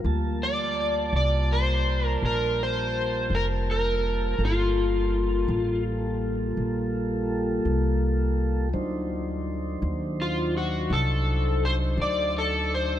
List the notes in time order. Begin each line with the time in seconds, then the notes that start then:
0.04 D2 G3 A#3 F4 A5
0.43 D5
1.13 C2 D5
1.53 C5
2.07 A#4
2.22 A#1 A#4
2.63 C5
3.30 F1
3.35 A#4
3.71 A#4
4.39 G1 G3 A#3 F4 A4
4.45 F4
5.48 A1
6.57 A#1
7.65 C2
8.73 D2 F#3 D4 D#4 C5
9.82 D#2
10.22 F4
10.57 F#4
10.90 C2 A4
11.65 C5
11.97 D2
12.02 D5
12.38 A4
12.74 C5